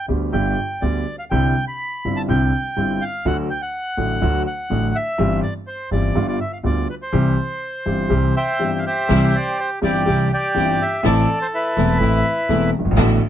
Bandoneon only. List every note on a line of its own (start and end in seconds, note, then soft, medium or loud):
0.33 0.84 G5 medium
0.82 1.16 D5 medium
1.19 1.24 F5 medium
1.31 1.65 G5 medium
1.68 2.18 B5 medium
2.16 2.22 A5 medium
2.29 3.04 G5 medium
3.02 3.27 F5 medium
3.26 3.37 F#5 medium
3.50 3.62 G5 medium
3.62 4.43 F#5 medium
4.47 4.97 F#5 medium
4.95 5.40 E5 medium
5.43 5.54 D5 medium
5.67 5.90 C5 medium
5.92 6.27 D5 medium
6.28 6.40 D5 medium
6.41 6.52 E5 medium
6.53 6.58 F5 medium
6.66 6.88 D5 medium
6.90 6.95 B4 medium
7.02 8.35 C5 medium
8.37 8.85 C5 medium
8.37 8.85 E5 medium
8.37 8.80 G5 medium
8.79 8.85 F5 soft
8.86 9.79 G4 medium
8.86 9.58 C5 medium
8.86 9.36 E5 medium
9.35 9.60 D5 medium
9.59 9.70 C5 medium
9.84 10.32 G4 medium
9.84 10.29 D5 medium
10.33 11.01 G4 medium
10.33 10.83 D5 medium
10.82 11.06 E5 medium
11.05 11.98 A4 medium
11.05 11.39 D5 medium
11.42 11.47 C5 medium
11.54 12.70 E4 medium
11.54 12.70 B4 medium